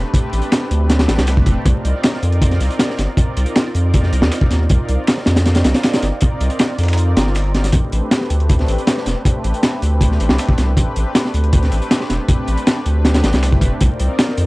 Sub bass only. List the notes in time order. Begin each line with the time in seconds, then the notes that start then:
0.33 A1
0.71 D2
1.09 A1
1.18 C2
1.47 E1
1.65 C2
1.85 C2
2.23 F2
2.60 C2
2.98 G1
3.37 C2
3.75 F2
4.13 C2
4.22 D#2
4.51 D#2
4.70 C2
4.89 C2
5.27 F2
5.65 C2
6.02 G1
6.41 C2
6.78 F2
7.17 G1
7.73 A1
7.92 A1
8.30 D2
8.68 A1
9.06 E1
9.44 A1
9.82 D2
10.20 A1
10.30 C2
10.58 C2
10.77 A1
10.96 A1
11.34 D2
11.72 A1
12.10 E1
12.48 A1
12.86 D2
13.24 A1
13.34 C2
13.61 E1
13.81 C2
14.00 C2
14.38 F2